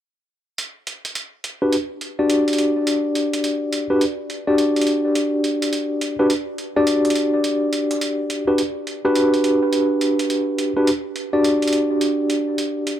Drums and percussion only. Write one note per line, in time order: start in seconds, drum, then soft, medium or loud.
0.58 closed hi-hat medium
0.87 closed hi-hat medium
1.05 closed hi-hat medium
1.15 closed hi-hat medium
1.44 closed hi-hat medium
1.73 closed hi-hat medium
2.01 closed hi-hat soft
2.30 closed hi-hat medium
2.48 closed hi-hat soft
2.53 closed hi-hat medium
2.58 closed hi-hat medium
2.87 closed hi-hat medium
3.15 closed hi-hat medium
3.33 closed hi-hat medium
3.44 closed hi-hat medium
3.73 closed hi-hat medium
4.01 closed hi-hat medium
4.30 closed hi-hat soft
4.58 closed hi-hat medium
4.76 closed hi-hat soft
4.81 closed hi-hat medium
4.87 closed hi-hat medium
5.15 closed hi-hat medium
5.44 closed hi-hat medium
5.62 closed hi-hat medium
5.73 closed hi-hat medium
6.01 closed hi-hat medium
6.30 closed hi-hat medium
6.58 closed hi-hat soft
6.87 closed hi-hat medium
7.05 closed hi-hat soft
7.10 closed hi-hat medium
7.15 closed hi-hat medium
7.44 closed hi-hat medium
7.73 closed hi-hat medium
7.91 closed hi-hat medium
8.01 closed hi-hat medium
8.30 closed hi-hat medium
8.58 closed hi-hat medium
8.87 closed hi-hat soft
9.15 closed hi-hat medium
9.34 closed hi-hat soft
9.44 closed hi-hat medium
9.73 closed hi-hat medium
10.01 closed hi-hat medium
10.19 closed hi-hat medium
10.30 closed hi-hat medium
10.58 closed hi-hat medium
10.87 closed hi-hat medium
11.16 closed hi-hat soft
11.44 closed hi-hat medium
11.62 closed hi-hat soft
11.67 closed hi-hat medium
11.73 closed hi-hat medium
12.01 closed hi-hat medium
12.30 closed hi-hat medium
12.58 closed hi-hat medium
12.87 closed hi-hat medium